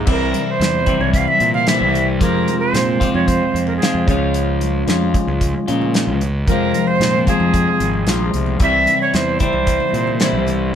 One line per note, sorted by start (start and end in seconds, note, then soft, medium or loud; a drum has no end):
0.06 0.32 C2 medium
0.06 0.85 C3 medium
0.06 0.86 E3 medium
0.06 0.86 G3 medium
0.06 0.87 C4 medium
0.06 0.85 E4 medium
0.06 kick medium
0.06 crash medium
0.11 0.52 A#4 medium
0.34 closed hi-hat medium
0.34 high conga medium
0.51 1.02 C5 medium
0.59 0.85 E2 medium
0.59 snare medium
0.59 closed hi-hat medium
0.73 high conga medium
0.86 1.66 C3 medium
0.86 1.66 E3 medium
0.86 1.66 G3 medium
0.86 1.66 C4 medium
0.86 1.65 E4 medium
0.86 kick medium
0.86 closed hi-hat soft
0.86 low conga medium
1.00 1.25 C2 medium
1.00 1.13 C#5 medium
1.00 high conga medium
1.14 1.19 E5 medium
1.14 1.30 F5 medium
1.14 kick medium
1.14 closed hi-hat medium
1.28 1.53 E5 loud
1.28 high conga medium
1.40 1.82 A#2 medium
1.40 closed hi-hat medium
1.54 1.69 F5 medium
1.54 low conga medium
1.67 2.18 C3 medium
1.67 2.19 E3 medium
1.67 2.20 G3 medium
1.67 2.20 C4 medium
1.67 2.20 E4 medium
1.67 2.08 E5 medium
1.67 snare loud
1.67 closed hi-hat medium
1.81 2.18 C2 medium
1.94 closed hi-hat medium
1.94 low conga medium
2.18 2.98 F2 medium
2.18 2.45 F2 medium
2.18 2.98 C3 medium
2.18 3.02 F3 medium
2.18 3.02 G#3 medium
2.18 2.99 C4 medium
2.18 3.00 F4 medium
2.18 2.58 A#4 medium
2.18 kick medium
2.18 closed hi-hat medium
2.48 closed hi-hat medium
2.48 high conga medium
2.60 3.10 C5 medium
2.73 2.98 A#2 medium
2.73 snare medium
2.73 closed hi-hat medium
2.88 high conga medium
3.00 3.79 F2 medium
3.00 3.80 C3 medium
3.00 3.81 F3 medium
3.00 3.82 G#3 medium
3.00 3.79 C4 medium
3.00 3.83 F4 medium
3.00 kick medium
3.00 closed hi-hat medium
3.00 low conga medium
3.14 3.39 F2 medium
3.14 3.28 C#5 medium
3.14 high conga medium
3.27 3.66 C5 medium
3.27 kick medium
3.27 closed hi-hat medium
3.40 high conga medium
3.54 3.79 F2 medium
3.54 closed hi-hat medium
3.67 3.76 A#4 medium
3.67 low conga medium
3.77 4.05 F2 medium
3.77 4.06 C3 medium
3.77 4.16 G#4 medium
3.82 4.08 F3 medium
3.82 4.09 G#3 medium
3.82 4.07 C4 medium
3.82 4.10 F4 medium
3.82 snare medium
3.82 closed hi-hat medium
3.94 4.06 F2 medium
4.07 4.83 C#2 medium
4.07 4.86 C#3 medium
4.07 4.88 F3 medium
4.07 4.88 G#3 medium
4.07 4.87 C#4 medium
4.07 4.90 F4 medium
4.07 kick medium
4.07 closed hi-hat medium
4.07 low conga medium
4.34 closed hi-hat medium
4.61 closed hi-hat soft
4.61 high conga medium
4.87 5.12 F2 medium
4.87 5.66 C#3 medium
4.87 5.66 F3 medium
4.87 5.66 G#3 medium
4.87 5.67 C#4 medium
4.87 5.66 F4 medium
4.87 snare medium
4.87 closed hi-hat medium
5.02 high conga medium
5.14 kick medium
5.14 closed hi-hat medium
5.14 low conga medium
5.27 5.52 C#2 medium
5.27 high conga medium
5.41 kick medium
5.41 closed hi-hat medium
5.54 high conga medium
5.68 6.09 A#2 medium
5.68 6.21 C#3 medium
5.68 6.20 F3 medium
5.68 6.20 G#3 medium
5.68 6.19 C#4 medium
5.68 6.19 F4 medium
5.68 closed hi-hat medium
5.82 low conga medium
5.94 snare medium
5.94 closed hi-hat medium
6.07 6.44 C#2 medium
6.21 closed hi-hat medium
6.21 low conga medium
6.47 6.72 F2 medium
6.47 7.26 F2 medium
6.47 7.27 C3 medium
6.47 7.27 F3 medium
6.47 7.27 G#3 medium
6.47 6.89 A#4 medium
6.47 kick medium
6.47 closed hi-hat medium
6.51 7.28 C4 medium
6.51 7.27 F4 medium
6.74 closed hi-hat medium
6.74 high conga medium
6.87 7.27 C5 loud
7.00 7.25 A#2 medium
7.00 snare medium
7.00 closed hi-hat medium
7.14 high conga medium
7.27 8.05 F2 medium
7.27 8.06 C3 medium
7.27 8.07 F3 medium
7.27 8.07 G#3 medium
7.27 8.09 C4 medium
7.27 8.06 F4 medium
7.27 8.30 G#4 medium
7.27 kick medium
7.27 closed hi-hat medium
7.27 low conga medium
7.40 7.65 F2 medium
7.40 high conga medium
7.54 kick medium
7.54 closed hi-hat medium
7.68 high conga medium
7.80 8.04 G#1 medium
7.80 closed hi-hat medium
7.94 high conga soft
8.07 8.31 A#1 medium
8.07 8.59 F2 medium
8.07 8.59 C3 medium
8.07 8.60 F3 medium
8.07 8.60 G#3 medium
8.07 8.63 C4 medium
8.07 8.60 F4 medium
8.07 snare medium
8.07 closed hi-hat medium
8.07 high conga soft
8.20 high conga medium
8.34 8.58 C2 medium
8.34 closed hi-hat medium
8.34 low conga medium
8.46 low conga medium
8.60 8.85 C2 medium
8.60 9.39 C3 medium
8.60 9.40 E3 medium
8.60 9.40 G3 medium
8.60 9.40 C4 medium
8.60 9.39 E4 medium
8.60 8.99 E5 loud
8.60 kick medium
8.60 closed hi-hat medium
8.86 closed hi-hat medium
8.86 high conga medium
9.02 9.16 C#5 medium
9.14 9.39 E2 medium
9.14 9.41 C5 medium
9.14 snare medium
9.14 closed hi-hat medium
9.39 10.19 C3 medium
9.39 10.20 E3 medium
9.39 10.19 G3 medium
9.39 10.19 C4 medium
9.39 10.19 E4 medium
9.39 10.44 C5 medium
9.39 kick medium
9.39 closed hi-hat medium
9.39 low conga medium
9.52 9.78 C2 medium
9.52 high conga medium
9.67 kick medium
9.67 closed hi-hat medium
9.80 high conga medium
9.93 10.34 A#2 medium
9.93 closed hi-hat medium
10.07 low conga medium
10.20 10.72 C3 medium
10.20 10.73 E3 medium
10.20 10.73 G3 medium
10.20 10.74 C4 medium
10.20 snare loud
10.20 closed hi-hat medium
10.24 10.74 E4 medium
10.33 10.71 C2 medium
10.47 closed hi-hat soft
10.47 low conga medium